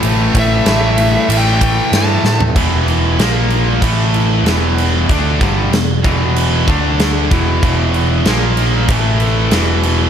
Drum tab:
CC |----------------|x-x-x-x-x-x-x-x-|x-x-x-x-x-x-x-x-|x-x-x-x-x-x-x-x-|
RD |x-x-x-x-x-x-x---|----------------|----------------|----------------|
SD |----o-------o-o-|----o-------o---|----o-------o---|----o-------o---|
FT |---------------o|----------------|----------------|----------------|
BD |--o-------o-----|o-------o-------|o-o---o---o---o-|o-------o-------|